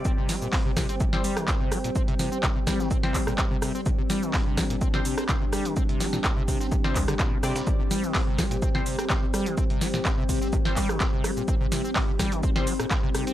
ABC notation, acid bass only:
X:1
M:4/4
L:1/16
Q:1/4=126
K:Cm
V:1 name="Acid bass" clef=bass
C C, G, B,, C C, C, C C, C, G, E, C C, G, B,, | C C, C, C C, C, G, E, C C, G, B,, C C, C, C | C, C, G, E, C C, G, B,, C C, C, C C, C, G, E, | C C, G, B,, C C, C, C C, C, C,, D, B,, C, C, C, |
C, C, G, E, C C, G, B,, C C, C, C C, C, G, E, | C C, G, B,, C C, C, C C, C, G, E, C C, G, B,, | C C, C, C C, C, G, E, C C, G, B,, C C, C, C |]